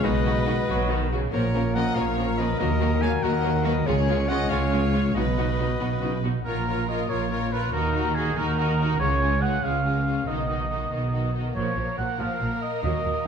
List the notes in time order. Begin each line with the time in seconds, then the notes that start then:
Already playing: G#3
0.03 B1 B2 D#3 D#4 F#4 B4 D#5
0.16 F#3
0.25 D#3 D#4 F#4
0.46 D#3 D#4 F#4 F#5
0.58 B5
0.68 B1 B2 F#3 F#4 F#5
0.80 B4
0.89 D#3 D#4 F#4
1.01 F#3
1.11 C#3 D#4 F#4
1.22 F#3
1.32 A#1 A#2 F3 A#3 C#4 F4 A#4 C#5
1.44 F3
1.54 F3 A#3 C#4 F4 A#4
1.65 C#5
1.75 F3 A#3 C#4 A#4 D#5 F#5 A#5
1.86 C#6
1.95 A#1 A#2 F3 A#3 C#4 A#4 C#5 F5 A#5
2.07 C#5
2.17 F3 A#3 C#4 F4 A#4
2.29 F3
2.38 F3 A#3 C#4 F4 A#4 B4 D#5
2.49 F3
2.59 D#2 D#3 F#3 A#3 F#4 A#4 D#5
2.71 A#3
2.80 F#3 A#3 F#4 A#4
2.92 A#4
3.02 F#3 A#3 F#4 A#4 F5 F#5 G#5
3.13 A#5
3.23 D#2 D#3 F#3 A#3 F#4 A#4 D#5 F#5
3.35 A#4
3.44 F#3 A#3 F#4 A#4
3.55 A#3
3.65 F#3 A#3 F#4 A#4 B4 D#5
3.77 A#3
3.86 C#2 C#3 G#3 C#4 F4 G#4 C#5
3.98 G#3
4.08 G#3 C#4 F4
4.19 C#5
4.29 G#3 C#4 F4 D#5 F#5 G#5
4.40 C#6
4.50 C#2 C#3 G#3 C#4 F4 C#5 F5 G#5
4.62 C#5
4.72 G#3 C#4 F4
4.84 G#3
4.94 G#3 C#4 F4
5.06 G#3
5.15 B1 B2 F#3 B3 D#4 F#4 B4 D#5
5.28 F#3
5.37 B3 D#4 F#4
5.49 D#5
5.58 B3 D#4 F#4 B5
5.70 D#6
5.80 B1 B2 B3 D#4 F#4 B5
5.91 D#5
6.02 C#3 B3 D#4 F#4
6.24 B2 B3 D#4 F#4
6.36 F#3
6.44 A#1 A#2 F4 A#4 C#5
6.66 C#4 F4 A#4 C#5
6.88 F4 A#4 C#5 D#5
7.09 A#1 A#2 F4 A#4 C#5
7.30 F4 A#4 C#5 F5
7.52 F4 A#4 B4 C#5
7.72 D#2 D#3 D#4 F#4 A#4
7.94 D#4 F#4
8.15 D#4 F#4 G#4 A#4
8.36 D#2 D#3 D#4 F#4 A#4 D#5
8.57 D#4 F#4 F#5
8.79 D#4 F#4 D#5
9.00 C#2 C#3 G#3 C#4 F4 C#5
9.21 G#3 C#4 F4
9.41 G#3 C#4 F4 G#4 F#5
9.63 C#2 C#3 G#3 C#4 F4 C#5 F5
9.84 G#3 C#4 F4 F5
10.05 G#3 C#4 F4 C#5
10.27 B1 B2 D#3 D#4 F#4 D#5
10.48 D#3 D#4 F#4
10.69 D#3 D#4 F#4 B4
10.91 B1 B2 D#3 D#4 F#4 D#5
11.12 D#3 D#4 F#4 F#5
11.34 D#3 D#4 F#4 D#5
11.54 A#1 A#2 F3 A#3 A#4 C#5
11.76 A#1 A#2 F3 F4
11.98 A#1 A#2 F3 C#5 F#5
12.19 A#1 A#2 F3 F5
12.41 A#1 A#2 F3 A#5
12.62 D#5 F5
12.83 D#2 D#3 F#3 D#5
13.04 D#2 D#3 F#3 F#4